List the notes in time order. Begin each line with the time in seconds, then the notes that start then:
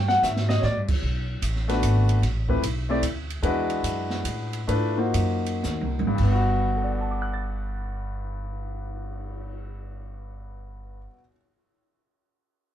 Already playing: G2
0.08 F#5, snare
0.23 G#2 E5, snare, hi-hat pedal
0.36 snare
0.49 D#5, snare
0.60 A2 C#5, snare
0.64 D5
0.77 G2
0.88 F#2, kick, crash
1.02 B1, kick
1.42 A1, kick, hi-hat pedal, ride
1.56 snare
1.68 A3 B3 D4 F#4 B4, snare, ride
1.82 G#1, kick, hi-hat pedal, ride
2.09 ride
2.22 A1, kick, snare, ride
2.48 A3 C4 E4 G4 B4, kick
2.62 B1, kick, hi-hat pedal, ride
2.89 A3 C4 E4 G4 D5
3.03 D2, kick, hi-hat pedal, ride
3.30 ride
3.42 E2 G#3 D4 E4 F#4 B4, kick, ride
3.70 ride
3.83 F#2, kick, hi-hat pedal, ride
4.10 snare
4.24 A2, kick, hi-hat pedal, ride
4.53 ride
4.67 G#2 A3 D4 E4 F4 B4, kick, ride
4.97 A#3 D#4 F4 F#4 C5
5.14 F#2, kick, hi-hat pedal, ride
5.46 ride
5.63 D#2, snare, hi-hat pedal
5.81 C2, high tom
5.99 G#1, high tom
6.07 G2
6.15 G1 G3, kick, crash
6.23 B3
6.32 F#4
6.55 cymbal swell
6.76 A4
6.84 D5
6.92 F#5
7.01 A5
7.11 D6
7.22 F#6
7.34 A6